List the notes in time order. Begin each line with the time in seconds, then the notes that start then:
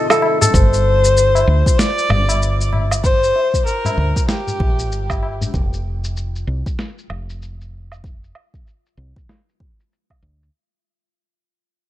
Already playing: A2 C3 D#3 C4 D#4 F4 D#5
0.10 A4, tabla na, tabla tin, low woodblock, shaker
0.22 tabla na
0.41 A4, tabla ge, shaker
0.53 G1 C5, kick, shaker
0.74 shaker
1.05 shaker
1.17 shaker
1.35 tabla na, shaker
1.47 D2
1.66 kick, shaker
1.79 D5, snare, shaker
1.99 shaker
2.10 G1, tabla ge, low woodblock
2.29 tabla na, shaker
2.42 shaker
2.60 tabla tin, shaker
2.73 tabla na, tabla ge
2.91 tabla tin, low woodblock, shaker
3.03 C5, kick, shaker
3.24 shaker
3.36 tabla tin
3.54 kick, shaker
3.66 A#4, shaker
3.85 tabla na, tabla ge, shaker
3.98 D2
4.16 kick, shaker
4.29 G4, snare, shaker
4.47 tabla ge, shaker
4.60 A#1, kick, tabla tin
4.79 shaker
4.91 G1, shaker
5.10 kick, tabla na, low woodblock, shaker
5.23 tabla na
5.41 tabla ge, shaker
5.54 F1, kick, shaker
5.73 shaker
6.04 shaker
6.17 shaker
6.36 shaker
6.47 C2
6.66 kick, shaker
6.79 snare, shaker
6.98 shaker
7.10 F1, low woodblock
7.30 shaker
7.42 shaker
7.61 shaker
7.92 low woodblock, shaker
8.04 kick, shaker
8.24 shaker
8.35 low woodblock
8.54 kick, shaker
8.67 shaker
8.86 shaker
8.97 C2
9.16 kick, shaker
9.29 snare, shaker
9.49 shaker
9.60 kick
9.80 shaker
9.93 shaker
10.10 kick, low woodblock, shaker
10.22 D2
10.43 shaker